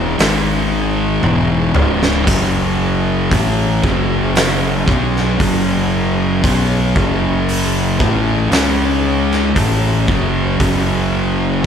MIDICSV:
0, 0, Header, 1, 5, 480
1, 0, Start_track
1, 0, Tempo, 1041667
1, 1045, Time_signature, 4, 2, 24, 8
1, 5373, End_track
2, 0, Start_track
2, 0, Title_t, "String machine"
2, 0, Program_c, 0, 50
2, 0, Note_on_c, 0, 61, 82
2, 0, Note_on_c, 0, 68, 72
2, 0, Note_on_c, 0, 75, 85
2, 63, Note_off_c, 0, 75, 0
2, 64, Note_off_c, 0, 61, 0
2, 82, Note_on_c, 0, 56, 85
2, 82, Note_on_c, 0, 63, 75
2, 551, Note_off_c, 0, 68, 0
2, 575, Note_on_c, 0, 49, 76
2, 1034, Note_off_c, 0, 56, 0
2, 1034, Note_off_c, 0, 63, 0
2, 1045, Note_off_c, 0, 49, 0
2, 1052, Note_on_c, 0, 68, 87
2, 1054, Note_on_c, 0, 54, 78
2, 1055, Note_on_c, 0, 61, 76
2, 3911, Note_off_c, 0, 68, 0
2, 3912, Note_off_c, 0, 54, 0
2, 3913, Note_off_c, 0, 61, 0
2, 3926, Note_on_c, 0, 49, 79
2, 3926, Note_on_c, 0, 63, 86
2, 3927, Note_on_c, 0, 56, 70
2, 4402, Note_off_c, 0, 49, 0
2, 4402, Note_off_c, 0, 56, 0
2, 4402, Note_off_c, 0, 63, 0
2, 4407, Note_on_c, 0, 61, 77
2, 4408, Note_on_c, 0, 68, 88
2, 4413, Note_on_c, 0, 54, 74
2, 5373, Note_off_c, 0, 54, 0
2, 5373, Note_off_c, 0, 61, 0
2, 5373, Note_off_c, 0, 68, 0
2, 5373, End_track
3, 0, Start_track
3, 0, Title_t, "Distorted electric guitar"
3, 0, Program_c, 1, 30
3, 0, Note_on_c, 1, 40, 92
3, 0, Note_on_c, 1, 47, 104
3, 0, Note_on_c, 1, 52, 103
3, 78, Note_off_c, 1, 40, 0
3, 79, Note_off_c, 1, 47, 0
3, 79, Note_off_c, 1, 52, 0
3, 84, Note_on_c, 1, 44, 92
3, 87, Note_on_c, 1, 51, 93
3, 90, Note_on_c, 1, 56, 99
3, 557, Note_off_c, 1, 44, 0
3, 558, Note_off_c, 1, 51, 0
3, 560, Note_off_c, 1, 56, 0
3, 564, Note_on_c, 1, 40, 95
3, 567, Note_on_c, 1, 47, 102
3, 569, Note_on_c, 1, 52, 100
3, 797, Note_off_c, 1, 40, 0
3, 799, Note_off_c, 1, 47, 0
3, 800, Note_off_c, 1, 52, 0
3, 802, Note_on_c, 1, 37, 99
3, 804, Note_on_c, 1, 44, 93
3, 806, Note_on_c, 1, 49, 100
3, 1036, Note_off_c, 1, 37, 0
3, 1037, Note_off_c, 1, 44, 0
3, 1038, Note_off_c, 1, 49, 0
3, 1044, Note_on_c, 1, 42, 87
3, 1044, Note_on_c, 1, 49, 99
3, 1049, Note_on_c, 1, 54, 110
3, 1517, Note_off_c, 1, 42, 0
3, 1517, Note_off_c, 1, 49, 0
3, 1520, Note_off_c, 1, 54, 0
3, 1523, Note_on_c, 1, 45, 89
3, 1525, Note_on_c, 1, 52, 92
3, 1527, Note_on_c, 1, 57, 102
3, 1757, Note_off_c, 1, 45, 0
3, 1758, Note_off_c, 1, 52, 0
3, 1759, Note_off_c, 1, 57, 0
3, 1767, Note_on_c, 1, 42, 99
3, 1768, Note_on_c, 1, 49, 92
3, 1770, Note_on_c, 1, 54, 93
3, 2239, Note_off_c, 1, 42, 0
3, 2239, Note_off_c, 1, 49, 0
3, 2240, Note_off_c, 1, 54, 0
3, 2245, Note_on_c, 1, 47, 86
3, 2247, Note_on_c, 1, 54, 91
3, 2250, Note_on_c, 1, 59, 87
3, 2478, Note_off_c, 1, 47, 0
3, 2479, Note_off_c, 1, 54, 0
3, 2480, Note_off_c, 1, 59, 0
3, 2487, Note_on_c, 1, 42, 92
3, 2489, Note_on_c, 1, 49, 103
3, 2492, Note_on_c, 1, 54, 110
3, 2959, Note_off_c, 1, 42, 0
3, 2960, Note_off_c, 1, 49, 0
3, 2961, Note_off_c, 1, 54, 0
3, 2965, Note_on_c, 1, 47, 99
3, 2968, Note_on_c, 1, 54, 106
3, 2971, Note_on_c, 1, 59, 108
3, 3198, Note_off_c, 1, 47, 0
3, 3199, Note_off_c, 1, 54, 0
3, 3201, Note_off_c, 1, 59, 0
3, 3207, Note_on_c, 1, 42, 93
3, 3208, Note_on_c, 1, 49, 88
3, 3209, Note_on_c, 1, 54, 96
3, 3679, Note_off_c, 1, 42, 0
3, 3680, Note_off_c, 1, 49, 0
3, 3681, Note_off_c, 1, 54, 0
3, 3684, Note_on_c, 1, 45, 95
3, 3687, Note_on_c, 1, 52, 93
3, 3689, Note_on_c, 1, 57, 103
3, 3918, Note_off_c, 1, 45, 0
3, 3919, Note_off_c, 1, 52, 0
3, 3920, Note_off_c, 1, 57, 0
3, 3922, Note_on_c, 1, 49, 85
3, 3924, Note_on_c, 1, 56, 89
3, 3926, Note_on_c, 1, 61, 95
3, 4397, Note_off_c, 1, 49, 0
3, 4398, Note_off_c, 1, 56, 0
3, 4399, Note_off_c, 1, 61, 0
3, 4403, Note_on_c, 1, 45, 96
3, 4406, Note_on_c, 1, 52, 99
3, 4406, Note_on_c, 1, 57, 101
3, 4638, Note_off_c, 1, 45, 0
3, 4639, Note_off_c, 1, 52, 0
3, 4640, Note_off_c, 1, 57, 0
3, 4645, Note_on_c, 1, 42, 90
3, 4647, Note_on_c, 1, 49, 92
3, 4648, Note_on_c, 1, 54, 112
3, 4877, Note_off_c, 1, 42, 0
3, 4880, Note_off_c, 1, 49, 0
3, 4880, Note_off_c, 1, 54, 0
3, 4882, Note_on_c, 1, 42, 96
3, 4885, Note_on_c, 1, 49, 94
3, 4887, Note_on_c, 1, 54, 109
3, 5358, Note_off_c, 1, 42, 0
3, 5359, Note_off_c, 1, 49, 0
3, 5361, Note_off_c, 1, 54, 0
3, 5373, End_track
4, 0, Start_track
4, 0, Title_t, "Fingered electric bass"
4, 0, Program_c, 2, 33
4, 0, Note_on_c, 2, 28, 95
4, 68, Note_off_c, 2, 28, 0
4, 89, Note_on_c, 2, 32, 87
4, 549, Note_off_c, 2, 32, 0
4, 566, Note_on_c, 2, 28, 91
4, 789, Note_off_c, 2, 28, 0
4, 805, Note_on_c, 2, 25, 93
4, 1028, Note_off_c, 2, 25, 0
4, 1047, Note_on_c, 2, 30, 93
4, 1507, Note_off_c, 2, 30, 0
4, 1528, Note_on_c, 2, 33, 91
4, 1750, Note_off_c, 2, 33, 0
4, 1765, Note_on_c, 2, 30, 95
4, 2227, Note_off_c, 2, 30, 0
4, 2248, Note_on_c, 2, 35, 94
4, 2470, Note_off_c, 2, 35, 0
4, 2488, Note_on_c, 2, 30, 98
4, 2948, Note_off_c, 2, 30, 0
4, 2968, Note_on_c, 2, 35, 92
4, 3190, Note_off_c, 2, 35, 0
4, 3207, Note_on_c, 2, 30, 90
4, 3668, Note_off_c, 2, 30, 0
4, 3688, Note_on_c, 2, 33, 91
4, 3910, Note_off_c, 2, 33, 0
4, 3923, Note_on_c, 2, 37, 92
4, 4386, Note_off_c, 2, 37, 0
4, 4406, Note_on_c, 2, 33, 94
4, 4630, Note_off_c, 2, 33, 0
4, 4645, Note_on_c, 2, 30, 89
4, 4869, Note_off_c, 2, 30, 0
4, 4884, Note_on_c, 2, 30, 93
4, 5348, Note_off_c, 2, 30, 0
4, 5373, End_track
5, 0, Start_track
5, 0, Title_t, "Drums"
5, 88, Note_on_c, 9, 46, 59
5, 95, Note_on_c, 9, 38, 113
5, 134, Note_off_c, 9, 46, 0
5, 141, Note_off_c, 9, 38, 0
5, 567, Note_on_c, 9, 48, 67
5, 613, Note_off_c, 9, 48, 0
5, 804, Note_on_c, 9, 45, 94
5, 850, Note_off_c, 9, 45, 0
5, 934, Note_on_c, 9, 38, 88
5, 980, Note_off_c, 9, 38, 0
5, 1047, Note_on_c, 9, 36, 108
5, 1049, Note_on_c, 9, 46, 58
5, 1049, Note_on_c, 9, 55, 83
5, 1093, Note_off_c, 9, 36, 0
5, 1095, Note_off_c, 9, 46, 0
5, 1095, Note_off_c, 9, 55, 0
5, 1527, Note_on_c, 9, 36, 105
5, 1530, Note_on_c, 9, 46, 56
5, 1574, Note_off_c, 9, 36, 0
5, 1576, Note_off_c, 9, 46, 0
5, 1767, Note_on_c, 9, 36, 104
5, 1813, Note_off_c, 9, 36, 0
5, 2007, Note_on_c, 9, 46, 59
5, 2014, Note_on_c, 9, 38, 114
5, 2053, Note_off_c, 9, 46, 0
5, 2060, Note_off_c, 9, 38, 0
5, 2247, Note_on_c, 9, 36, 99
5, 2293, Note_off_c, 9, 36, 0
5, 2380, Note_on_c, 9, 38, 30
5, 2426, Note_off_c, 9, 38, 0
5, 2488, Note_on_c, 9, 36, 111
5, 2492, Note_on_c, 9, 46, 66
5, 2534, Note_off_c, 9, 36, 0
5, 2538, Note_off_c, 9, 46, 0
5, 2967, Note_on_c, 9, 36, 110
5, 2969, Note_on_c, 9, 46, 60
5, 3013, Note_off_c, 9, 36, 0
5, 3015, Note_off_c, 9, 46, 0
5, 3207, Note_on_c, 9, 36, 100
5, 3253, Note_off_c, 9, 36, 0
5, 3450, Note_on_c, 9, 46, 65
5, 3496, Note_off_c, 9, 46, 0
5, 3687, Note_on_c, 9, 36, 102
5, 3733, Note_off_c, 9, 36, 0
5, 3925, Note_on_c, 9, 46, 64
5, 3932, Note_on_c, 9, 38, 116
5, 3971, Note_off_c, 9, 46, 0
5, 3978, Note_off_c, 9, 38, 0
5, 4292, Note_on_c, 9, 38, 30
5, 4338, Note_off_c, 9, 38, 0
5, 4406, Note_on_c, 9, 36, 112
5, 4408, Note_on_c, 9, 46, 61
5, 4452, Note_off_c, 9, 36, 0
5, 4454, Note_off_c, 9, 46, 0
5, 4646, Note_on_c, 9, 36, 104
5, 4692, Note_off_c, 9, 36, 0
5, 4885, Note_on_c, 9, 36, 107
5, 4887, Note_on_c, 9, 46, 55
5, 4931, Note_off_c, 9, 36, 0
5, 4933, Note_off_c, 9, 46, 0
5, 5373, End_track
0, 0, End_of_file